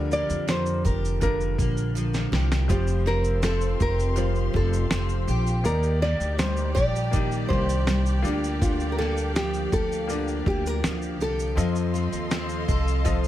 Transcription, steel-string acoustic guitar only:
0.00 1.20 D3 medium
0.00 0.47 F3 medium
0.00 0.10 A#3 medium
0.00 0.84 G4 medium
0.11 1.58 A#3 medium
0.48 1.95 F3 medium
0.84 2.31 G4 medium
1.21 2.77 D3 medium
1.59 2.77 A#3 medium
1.95 2.69 F3 medium
2.32 3.80 G4 medium
2.70 4.15 F3 medium
3.06 3.41 C4 medium
3.43 4.52 C4 medium
3.80 5.28 G4 medium
4.16 5.72 F3 medium
4.53 4.89 C4 medium
4.91 5.72 C4 medium
5.28 6.75 G4 medium
6.02 7.50 A#3 medium
6.39 7.87 G3 medium
6.75 9.39 G4 medium
7.13 8.24 D#3 medium
7.50 8.99 A#3 medium
7.87 9.36 G3 medium
8.25 8.61 D3 medium
8.62 10.09 D3 medium
8.99 10.46 A#3 medium
9.36 10.84 F3 medium
9.73 11.20 G4 medium
10.10 11.65 D3 medium
10.47 11.65 A#3 medium
10.84 11.57 F3 medium
11.21 11.65 G4 medium
11.58 13.04 F3 medium
11.94 12.31 C4 medium
12.31 13.28 C4 medium
12.69 13.28 A4 medium
13.05 13.28 F3 medium

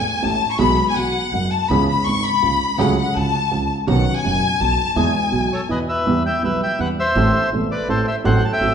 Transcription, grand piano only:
0.22 0.38 A1 medium
0.22 0.38 A2 medium
0.58 0.74 B1 medium
0.58 0.74 B2 medium
0.58 0.74 E3 medium
0.58 0.74 G#3 medium
0.58 0.74 B3 medium
0.58 0.74 G#4 medium
0.96 1.11 B1 soft
0.96 1.11 B2 soft
1.33 1.49 F#1 soft
1.33 1.48 F#2 soft
1.70 1.85 C#2 medium
1.70 1.85 C#3 medium
1.70 1.85 E3 medium
1.70 1.85 B3 medium
1.70 1.85 C#4 medium
1.70 1.85 G#4 medium
2.07 2.22 G#1 medium
2.07 2.22 G#2 soft
2.42 2.58 C#2 medium
2.42 2.58 C#3 medium
2.78 2.94 C#2 medium
2.78 2.94 C#3 medium
2.78 2.94 F#3 medium
2.78 2.94 A3 medium
2.78 2.94 C#4 medium
2.78 2.94 G#4 medium
3.15 3.31 C#2 soft
3.15 3.30 C#3 medium
3.51 3.67 C#2 medium
3.51 3.67 C#3 medium
3.87 4.03 B1 medium
3.87 4.03 B2 medium
3.87 4.03 D#3 medium
3.87 4.03 B3 medium
3.87 4.03 C#4 medium
3.87 4.03 F#4 medium
4.25 4.39 F#1 medium
4.25 4.40 F#2 medium
4.61 4.75 B1 medium
4.61 4.75 B2 medium
4.96 5.11 E2 medium
4.96 5.11 E3 medium
4.96 5.11 G#3 medium
4.96 5.11 B3 medium
4.96 5.11 G#4 medium
5.32 5.47 B1 medium
5.32 5.47 B2 soft
5.69 5.85 E2 medium
5.69 5.85 E3 medium
6.06 6.22 E2 medium
6.06 6.22 E3 medium
6.06 6.22 G3 medium
6.06 6.22 B3 medium
6.06 6.22 G4 medium
6.43 6.59 B1 soft
6.43 6.59 B2 soft
6.43 6.58 E3 soft
6.43 6.59 G3 soft
6.43 6.59 B3 soft
6.43 6.59 G4 soft
6.79 6.95 E2 medium
6.79 6.95 E3 soft
6.79 6.95 G3 soft
6.79 6.95 B3 soft
6.79 6.95 G4 medium
7.16 7.32 A1 medium
7.16 7.32 A2 medium
7.16 7.32 E3 medium
7.16 7.32 A3 medium
7.16 7.32 C4 medium
7.16 7.32 A4 medium
7.53 7.68 E1 soft
7.53 7.68 E2 soft
7.53 7.68 E3 soft
7.53 7.68 A3 soft
7.53 7.68 C4 soft
7.53 7.68 A4 soft
7.89 8.04 A1 medium
7.89 8.04 A2 soft
7.89 8.04 E3 soft
7.89 8.04 A3 soft
7.89 8.04 C4 soft
7.89 8.04 A4 soft
8.24 8.40 A1 medium
8.24 8.40 A2 medium
8.24 8.40 F#3 medium
8.24 8.40 A3 medium
8.24 8.40 C4 medium
8.24 8.40 A4 medium
8.61 8.74 A1 soft
8.61 8.74 A2 soft
8.61 8.74 F#3 soft
8.61 8.74 A3 soft
8.61 8.74 C4 soft
8.61 8.74 A4 soft

